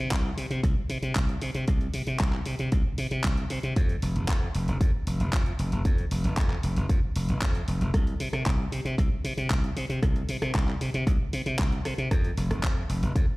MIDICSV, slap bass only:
0, 0, Header, 1, 3, 480
1, 0, Start_track
1, 0, Tempo, 521739
1, 1545, Time_signature, 4, 2, 24, 8
1, 12299, End_track
2, 0, Start_track
2, 0, Title_t, "Slap bass"
2, 0, Program_c, 0, 36
2, 103, Note_on_c, 0, 36, 87
2, 275, Note_off_c, 0, 36, 0
2, 344, Note_on_c, 0, 48, 77
2, 430, Note_off_c, 0, 48, 0
2, 465, Note_on_c, 0, 48, 78
2, 550, Note_off_c, 0, 48, 0
2, 585, Note_on_c, 0, 36, 80
2, 671, Note_off_c, 0, 36, 0
2, 823, Note_on_c, 0, 48, 89
2, 910, Note_off_c, 0, 48, 0
2, 943, Note_on_c, 0, 48, 80
2, 1029, Note_off_c, 0, 48, 0
2, 1064, Note_on_c, 0, 36, 77
2, 1236, Note_off_c, 0, 36, 0
2, 1303, Note_on_c, 0, 48, 98
2, 1390, Note_off_c, 0, 48, 0
2, 1423, Note_on_c, 0, 48, 77
2, 1509, Note_off_c, 0, 48, 0
2, 1546, Note_on_c, 0, 36, 92
2, 1717, Note_off_c, 0, 36, 0
2, 1782, Note_on_c, 0, 48, 88
2, 1869, Note_off_c, 0, 48, 0
2, 1904, Note_on_c, 0, 48, 88
2, 1990, Note_off_c, 0, 48, 0
2, 2026, Note_on_c, 0, 36, 84
2, 2197, Note_off_c, 0, 36, 0
2, 2263, Note_on_c, 0, 48, 75
2, 2349, Note_off_c, 0, 48, 0
2, 2386, Note_on_c, 0, 48, 77
2, 2471, Note_off_c, 0, 48, 0
2, 2505, Note_on_c, 0, 36, 83
2, 2591, Note_off_c, 0, 36, 0
2, 2743, Note_on_c, 0, 48, 91
2, 2830, Note_off_c, 0, 48, 0
2, 2863, Note_on_c, 0, 48, 84
2, 2949, Note_off_c, 0, 48, 0
2, 2984, Note_on_c, 0, 36, 77
2, 3156, Note_off_c, 0, 36, 0
2, 3223, Note_on_c, 0, 48, 102
2, 3310, Note_off_c, 0, 48, 0
2, 3343, Note_on_c, 0, 48, 76
2, 3429, Note_off_c, 0, 48, 0
2, 3462, Note_on_c, 0, 41, 94
2, 3635, Note_off_c, 0, 41, 0
2, 3702, Note_on_c, 0, 29, 93
2, 3789, Note_off_c, 0, 29, 0
2, 3825, Note_on_c, 0, 29, 93
2, 3910, Note_off_c, 0, 29, 0
2, 3943, Note_on_c, 0, 41, 83
2, 4116, Note_off_c, 0, 41, 0
2, 4186, Note_on_c, 0, 29, 79
2, 4271, Note_off_c, 0, 29, 0
2, 4304, Note_on_c, 0, 29, 81
2, 4390, Note_off_c, 0, 29, 0
2, 4422, Note_on_c, 0, 41, 83
2, 4509, Note_off_c, 0, 41, 0
2, 4663, Note_on_c, 0, 29, 88
2, 4750, Note_off_c, 0, 29, 0
2, 4783, Note_on_c, 0, 29, 88
2, 4869, Note_off_c, 0, 29, 0
2, 4902, Note_on_c, 0, 41, 78
2, 5075, Note_off_c, 0, 41, 0
2, 5144, Note_on_c, 0, 29, 101
2, 5230, Note_off_c, 0, 29, 0
2, 5264, Note_on_c, 0, 29, 71
2, 5350, Note_off_c, 0, 29, 0
2, 5384, Note_on_c, 0, 41, 89
2, 5556, Note_off_c, 0, 41, 0
2, 5623, Note_on_c, 0, 29, 90
2, 5710, Note_off_c, 0, 29, 0
2, 5742, Note_on_c, 0, 29, 90
2, 5829, Note_off_c, 0, 29, 0
2, 5864, Note_on_c, 0, 41, 88
2, 6036, Note_off_c, 0, 41, 0
2, 6104, Note_on_c, 0, 29, 78
2, 6190, Note_off_c, 0, 29, 0
2, 6223, Note_on_c, 0, 29, 77
2, 6309, Note_off_c, 0, 29, 0
2, 6343, Note_on_c, 0, 41, 83
2, 6430, Note_off_c, 0, 41, 0
2, 6586, Note_on_c, 0, 29, 91
2, 6671, Note_off_c, 0, 29, 0
2, 6705, Note_on_c, 0, 29, 85
2, 6791, Note_off_c, 0, 29, 0
2, 6825, Note_on_c, 0, 41, 91
2, 6996, Note_off_c, 0, 41, 0
2, 7065, Note_on_c, 0, 29, 90
2, 7151, Note_off_c, 0, 29, 0
2, 7184, Note_on_c, 0, 29, 84
2, 7270, Note_off_c, 0, 29, 0
2, 7305, Note_on_c, 0, 36, 88
2, 7476, Note_off_c, 0, 36, 0
2, 7544, Note_on_c, 0, 48, 91
2, 7630, Note_off_c, 0, 48, 0
2, 7662, Note_on_c, 0, 48, 87
2, 7749, Note_off_c, 0, 48, 0
2, 7783, Note_on_c, 0, 36, 83
2, 7956, Note_off_c, 0, 36, 0
2, 8022, Note_on_c, 0, 48, 76
2, 8109, Note_off_c, 0, 48, 0
2, 8143, Note_on_c, 0, 48, 80
2, 8229, Note_off_c, 0, 48, 0
2, 8265, Note_on_c, 0, 36, 84
2, 8351, Note_off_c, 0, 36, 0
2, 8505, Note_on_c, 0, 48, 91
2, 8591, Note_off_c, 0, 48, 0
2, 8624, Note_on_c, 0, 48, 84
2, 8710, Note_off_c, 0, 48, 0
2, 8744, Note_on_c, 0, 36, 83
2, 8916, Note_off_c, 0, 36, 0
2, 8984, Note_on_c, 0, 48, 100
2, 9070, Note_off_c, 0, 48, 0
2, 9103, Note_on_c, 0, 48, 73
2, 9190, Note_off_c, 0, 48, 0
2, 9225, Note_on_c, 0, 36, 93
2, 9396, Note_off_c, 0, 36, 0
2, 9466, Note_on_c, 0, 48, 91
2, 9551, Note_off_c, 0, 48, 0
2, 9584, Note_on_c, 0, 48, 93
2, 9670, Note_off_c, 0, 48, 0
2, 9703, Note_on_c, 0, 36, 86
2, 9875, Note_off_c, 0, 36, 0
2, 9947, Note_on_c, 0, 48, 78
2, 10032, Note_off_c, 0, 48, 0
2, 10067, Note_on_c, 0, 48, 85
2, 10152, Note_off_c, 0, 48, 0
2, 10183, Note_on_c, 0, 36, 88
2, 10270, Note_off_c, 0, 36, 0
2, 10425, Note_on_c, 0, 48, 97
2, 10511, Note_off_c, 0, 48, 0
2, 10544, Note_on_c, 0, 48, 88
2, 10630, Note_off_c, 0, 48, 0
2, 10664, Note_on_c, 0, 36, 77
2, 10836, Note_off_c, 0, 36, 0
2, 10904, Note_on_c, 0, 48, 100
2, 10990, Note_off_c, 0, 48, 0
2, 11022, Note_on_c, 0, 48, 80
2, 11109, Note_off_c, 0, 48, 0
2, 11144, Note_on_c, 0, 41, 96
2, 11316, Note_off_c, 0, 41, 0
2, 11382, Note_on_c, 0, 29, 92
2, 11469, Note_off_c, 0, 29, 0
2, 11504, Note_on_c, 0, 29, 88
2, 11590, Note_off_c, 0, 29, 0
2, 11624, Note_on_c, 0, 41, 85
2, 11796, Note_off_c, 0, 41, 0
2, 11862, Note_on_c, 0, 29, 80
2, 11949, Note_off_c, 0, 29, 0
2, 11982, Note_on_c, 0, 29, 83
2, 12069, Note_off_c, 0, 29, 0
2, 12104, Note_on_c, 0, 41, 87
2, 12190, Note_off_c, 0, 41, 0
2, 12299, End_track
3, 0, Start_track
3, 0, Title_t, "Muted slap bass strokes"
3, 2623, Note_on_c, 9, 29, 44
3, 2715, Note_off_c, 9, 29, 0
3, 6463, Note_on_c, 9, 29, 43
3, 6555, Note_off_c, 9, 29, 0
3, 10307, Note_on_c, 9, 29, 43
3, 10399, Note_off_c, 9, 29, 0
3, 12299, End_track
0, 0, End_of_file